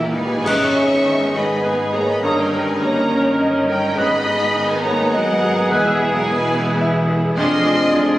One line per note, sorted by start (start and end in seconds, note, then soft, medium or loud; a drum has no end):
0.00 0.49 D#2 medium
0.00 0.45 E2 soft
0.00 0.16 A#2 soft
0.00 0.03 A#3 soft
0.00 0.20 A#3 medium
0.00 0.38 A#3 soft
0.00 0.13 E4 medium
0.00 0.25 G4 soft
0.00 0.10 A#4 soft
0.00 0.49 A#4 soft
0.00 0.48 D#5 medium
0.13 0.44 G#3 medium
0.13 0.46 D#4 soft
0.13 0.44 B4 medium
0.13 0.44 G#5 medium
0.25 0.46 G4 soft
0.43 2.20 G#1 medium
0.43 2.19 G#2 medium
0.43 0.67 G#3 medium
0.43 1.61 B3 medium
0.43 1.61 D#4 medium
0.43 2.20 G#4 medium
0.43 0.68 B4 medium
0.43 1.35 E5 medium
0.43 1.35 C#6 medium
0.43 0.74 D#6 medium
0.43 concert bass drum medium
0.43 crash medium
0.48 3.94 D#3 medium
0.48 2.21 B3 medium
0.48 1.36 C#4 medium
0.76 1.24 G#4 medium
1.06 1.53 D#3 soft
1.34 1.82 G#3 medium
1.34 1.65 B3 medium
1.34 1.65 D#5 medium
1.34 1.66 B5 medium
1.64 1.94 G#3 medium
1.64 2.22 B3 medium
1.64 2.22 D#4 medium
1.64 2.11 B4 medium
1.64 1.94 B4 medium
1.64 1.94 G#5 medium
1.93 2.10 A#3 medium
1.93 2.23 G#4 medium
1.93 2.09 C#5 medium
1.93 2.09 A#5 medium
2.09 2.24 B3 medium
2.09 2.24 D#5 medium
2.09 2.24 B5 medium
2.22 3.94 G1 medium
2.22 3.92 G2 medium
2.22 3.93 G2 medium
2.22 2.38 A#3 medium
2.22 2.45 A#3 medium
2.22 2.80 C#4 medium
2.22 3.94 C#4 medium
2.22 2.80 D#4 medium
2.22 3.93 A#4 medium
2.22 2.37 C#5 medium
2.22 2.43 C#5 medium
2.22 2.38 A#5 medium
2.22 2.51 D#6 medium
2.38 2.68 G3 medium
2.38 2.67 A#4 medium
2.38 2.68 G5 medium
2.53 2.99 A#4 medium
2.67 2.82 G#3 medium
2.67 2.82 B4 medium
2.67 2.83 G#5 medium
2.80 3.28 G3 medium
2.80 3.39 A#3 medium
2.80 3.94 C#4 medium
2.80 3.94 D#4 medium
2.80 3.40 C#5 medium
2.80 3.40 A#5 medium
3.10 3.56 C#4 medium
3.40 3.86 D#5 medium
3.67 3.94 G3 medium
3.67 3.97 A#4 medium
3.67 3.96 A#4 medium
3.67 3.96 G5 medium
3.95 5.70 G#1 medium
3.95 5.70 G#2 medium
3.95 5.67 G#2 medium
3.95 5.65 D#3 medium
3.95 4.16 G#3 medium
3.95 4.69 B3 medium
3.95 7.33 B3 medium
3.95 5.69 B3 medium
3.95 5.67 D#4 medium
3.95 7.34 G#4 medium
3.95 4.17 B4 medium
3.95 4.70 D#5 medium
3.95 4.70 B5 loud
3.95 4.24 D#6 medium
4.26 4.73 G#4 medium
4.55 5.02 D#3 medium
4.70 4.85 G#3 medium
4.70 4.85 B4 medium
4.70 4.84 G#5 medium
4.81 5.13 C#5 medium
4.81 5.12 A#5 medium
4.85 5.14 A#3 medium
4.85 5.31 B3 medium
5.12 5.71 F#3 medium
5.12 5.71 A#4 medium
5.12 5.59 D#5 medium
5.12 5.70 F#5 medium
5.43 5.71 G#4 medium
5.69 7.34 E1 medium
5.69 7.33 E2 medium
5.69 7.34 E2 medium
5.69 7.34 E3 medium
5.69 5.89 G#3 medium
5.69 5.85 G#3 medium
5.69 6.25 B3 medium
5.69 6.26 E4 medium
5.69 5.90 B4 medium
5.69 5.84 G#5 medium
5.69 5.96 E6 medium
5.74 5.86 B4 medium
5.85 6.13 E3 medium
5.85 6.13 G#4 medium
5.85 6.14 E5 medium
6.00 6.44 G#4 medium
6.12 6.26 F#3 medium
6.12 6.27 A#4 medium
6.12 6.27 F#5 medium
6.25 6.71 B2 medium
6.25 6.81 G#3 medium
6.25 7.35 B3 medium
6.25 7.35 E4 medium
6.25 6.82 B4 medium
6.25 6.82 G#5 medium
6.54 6.98 B3 medium
6.81 7.26 E5 medium
7.08 7.37 G#4 medium
7.37 7.86 F1 medium
7.37 8.19 F2 medium
7.37 7.86 F2 medium
7.37 8.19 F3 medium
7.37 8.19 G#3 medium
7.37 8.17 C4 loud
7.37 7.46 D4 medium
7.37 8.19 D4 medium
7.37 7.46 G#4 medium
7.37 8.19 G#4 medium
7.37 8.19 D5 medium
7.37 8.16 D#5 loud
7.37 8.16 C6 loud
7.37 8.19 F6 medium
7.65 7.73 D4 medium
7.65 8.09 G#4 medium
7.65 7.74 G#4 medium
7.93 8.19 F1 medium
7.93 8.19 F2 medium
7.93 8.19 F3 medium
7.93 8.01 D4 medium
7.93 8.02 G#4 medium